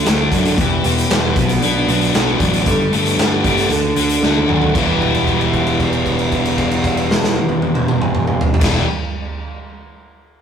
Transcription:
Already playing: D3 A3 D4 F#4 A4
0.03 D2 D3 A3 D4 F#4, snare, closed hi-hat
0.16 A3 D4 F#4
0.32 F#2 F#3 D4, kick, closed hi-hat
0.43 A3 D4 F#4, closed hi-hat
0.56 E1 E2 B2 E3 G3 B3 E4 G4 B4, kick, closed hi-hat
0.82 E1 E3 G3 B3 G4, closed hi-hat
0.98 closed hi-hat
1.08 E1 E2 B2 E3 G3 B3 G4, snare, closed hi-hat
1.34 B1 B2 F#3 B3 C4 D4 D#4 F#4 G4 C5, kick, closed hi-hat
1.48 B3 D4 F#4, snare, closed hi-hat
1.53 B3 D4 F#4 B4
1.61 B1 B3 D4, closed hi-hat
1.74 B3 D4 F#4
1.87 B1 F#3 B3 D4 F#4, closed hi-hat
2.01 closed hi-hat
2.13 B1 B2 F#3 B3 D4 F#4, snare, closed hi-hat
2.25 B3 D4 F#4
2.40 A1 F#3 D4, kick, closed hi-hat
2.52 B3 D4 F#4, closed hi-hat
2.65 G1 G3 B3 D4 G4 A4, kick, closed hi-hat
2.91 G1 G3 A3 B3 D4 A4, closed hi-hat
3.06 closed hi-hat
3.17 G1 G3 A3 B3 D4 A4, snare, closed hi-hat
3.43 G1 G3 B3 D4 G4 A4, kick, closed hi-hat
3.57 B3 D4 A4, snare, closed hi-hat
3.69 D2 D3 A3 D4 F#4 A4, closed hi-hat
3.83 D4 F#4 A4
3.96 D2 D3 D4 F#4, closed hi-hat
4.00 A4
4.09 closed hi-hat
4.22 D2 D3 A3 D4 F#4 A4, snare
4.36 D4 F#4 A4, high tom
4.48 D#2 F#3 F#4, mid tom
4.62 D4 F#4 A4, floor tom
4.70 E2
4.75 E1 E2 B2 E3 G3 B3 E4 G4 B4, kick, crash
4.82 G3 E4
4.89 G4
5.01 kick, crash
5.15 crash
5.28 kick, crash
5.41 crash
5.54 kick, crash
5.67 crash
5.80 kick, crash
5.93 crash
6.06 kick, crash
6.19 crash
6.32 kick, crash
6.45 crash
6.58 kick, crash
6.71 crash
6.84 kick, crash
6.97 crash
7.11 snare
7.24 snare
7.36 high tom
7.49 high tom
7.62 high tom
7.75 mid tom
7.88 mid tom
8.02 mid tom
8.15 mid tom
8.27 mid tom
8.41 floor tom
8.54 E2, floor tom
8.60 E1 E2 B2 G3 B3 E4 G4 B4, kick, snare, crash
8.64 E3 E4
8.68 G3 E4
8.75 G4

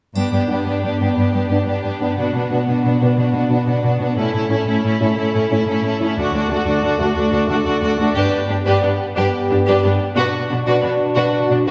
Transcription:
0.15 G2 B3 D4 G4, triangle
0.31 G2 B3 D4 G4
0.48 G2 B3 D4 G4
0.65 G2 B3 D4 G4
0.82 G2 B3 D4 G4
0.99 G2 B3 D4 G4
1.16 G2 B3 D4 G4
1.33 G2 B3 D4 G4
1.50 G2 B3 D4 G4
1.67 G2 B3 D4 G4
1.84 G2 B3 D4 G4
2.00 G2 B3 D4 G4
2.17 B2 B3 D4 F#4
2.35 B2 B3 D4 F#4
2.51 B2 B3 D4 F#4
2.67 B2 B3 D4 F#4
2.84 B2 B3 D4 F#4
3.01 B2 B3 D4 F#4
3.16 B2 B3 D4 F#4
3.34 B2 B3 D4 F#4
3.50 B2 B3 D4 F#4
3.67 B2 B3 D4 F#4
3.82 B2 B3 D4 F#4
4.00 B2 B3 D4 F#4
4.17 A2 C#4 E4 A4
4.33 A2 C#4 E4 A4
4.49 A2 C#4 E4 A4
4.67 A2 C#4 E4 A4
4.84 A2 C#4 E4 A4
5.01 A2 C#4 E4 A4
5.17 A2 C#4 E4 A4
5.33 A2 C#4 E4 A4
5.50 A2 C#4 E4 A4
5.67 A2 C#4 E4 A4
5.83 A2 C#4 E4 A4
6.00 A2 C#4 E4 A4
6.18 D2 D4 F#4 A4
6.33 D2 D4 F#4 A4
6.49 D2 A3 D4 F#4 A4
6.67 D2 D4 F#4 A4
6.83 D2 D4 F#4 A4
6.98 D2 A3 D4 F#4 A4
7.15 D2 D4 F#4 A4
7.32 D2 D4 F#4 A4
7.47 D2 A3 D4 F#4 A4
7.65 D2 D4 F#4 A4
7.82 D2 D4 F#4 A4
7.98 D2 A3 D4 F#4 A4
8.14 G2 B3 D4 G4 B4
8.48 G2 D4 G4
8.66 G2 D4 G4 B4
8.81 G2 B3 D4
9.15 G2 D4 G4 B4
9.50 G2 D4 G4
9.65 G2 D4 G4 B4
9.83 G2 B3 D4
10.16 B2 D4 F#4 B4
10.49 B2 D4 F#4
10.66 B2 D4 F#4 B4
10.82 B2 B3 D4
11.16 B2 D4 F#4 B4
11.49 B2 D4 F#4
11.66 D4 F#4 B4

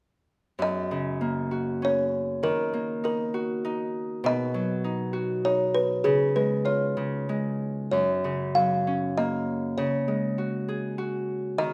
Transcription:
0.59 F#2 D#5
0.91 C#3
1.21 A#3
1.51 F#4
1.82 C#4 C#5
2.43 D#3 A#4
2.74 A#3
3.04 D#4 A#4
3.34 F#4
3.65 D#4
4.24 B2 D#5
4.54 F#3
4.84 D#4
5.13 F#4
5.45 D#4 C#5
5.75 B4
6.04 C#3 G#4
6.36 G#3 B4
6.65 F4 C#5
6.97 C#3
7.29 G#3
7.92 F#2 C#5
8.24 C#3
8.55 F#3 F5
8.87 C#4
9.18 A#3 D#5
9.78 C#3 C#5
10.08 G#3
10.38 F#4
10.68 G#4
10.98 F#4
11.58 D#3 D#5

